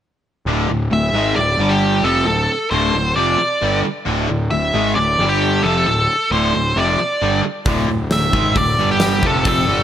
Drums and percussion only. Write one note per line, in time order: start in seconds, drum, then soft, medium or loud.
7.66 kick medium
7.66 open hi-hat soft
8.11 snare loud
8.11 open hi-hat soft
8.33 kick medium
8.56 kick medium
8.56 open hi-hat soft
9.00 snare loud
9.00 open hi-hat medium
9.23 kick loud
9.45 kick loud
9.45 open hi-hat soft